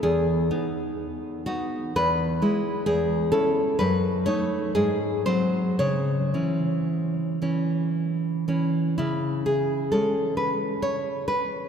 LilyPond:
\new Staff \with { instrumentName = "Nylon-string guitar" } { \time 3/4 \key e \major \tempo 4 = 64 << { gis'4. fis'8 b'4 | \key cis \minor gis'8 a'8 b'8 cis''8 gis'8 bis'8 | cis''2 r4 | e'8 gis'8 a'8 b'8 cis''8 b'8 | } \\ { e,8 <b dis'>4 <b dis'>8 e,8 <gis e'>8 | e,8 <cis' e'>8 fis,8 <a dis'>8 gis,8 <fis bis>8 | cis8 <e cis'>4 <e cis'>4 <e cis'>8 | cis4 <gis cis'>2 | } >> }